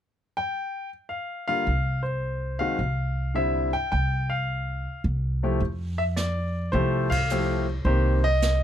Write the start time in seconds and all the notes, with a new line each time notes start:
0.37 G5
1.09 F5
1.48 D3 G3 A#3 F4 F5
1.67 C2
2.03 C5
2.59 D#3 G#3 C4 F#4 F5
2.79 C2
3.34 D3 G3 C4 E4 E5
3.73 G5
3.92 C2 G5
4.30 F5
5.04 C2
5.43 F3 A3 E4 G4
5.60 F2, brush sweep
5.98 E5
6.16 D5, snare, hi-hat pedal
6.72 C2 F3 A3 E4 G4 C5, brush sweep
7.10 F5, kick, ride
7.30 F3 A3 E4 G4, hi-hat pedal
7.85 C2 D#3 A#3 C4 G4 C5, brush sweep
8.24 D#5
8.42 snare, hi-hat pedal